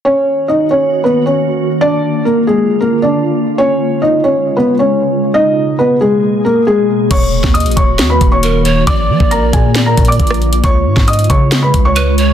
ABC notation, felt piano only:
X:1
M:4/4
L:1/16
Q:1/4=136
K:Ebm
V:1 name="Felt piano"
[Dd]4 [Ee]2 [Dd]3 [Cc]2 [Dd]4- [Dd] | [=D=d]4 [B,B]2 [A,A]3 [B,B]2 [Dd]4- [Dd] | [Dd]4 [Ee]2 [Dd]3 [Cc]2 [Dd]4- [Dd] | [Ee]4 [Cc]2 [A,A]4 [B,B]2 [A,A]4 |
[dd']4 [ee']2 [dd']3 [cc']2 [dd']4- [dd'] | [=d=d']4 [Bb]2 [Aa]3 [Bb]2 [dd']4- [dd'] | [dd']4 [ee']2 [dd']3 [cc']2 [dd']4- [dd'] |]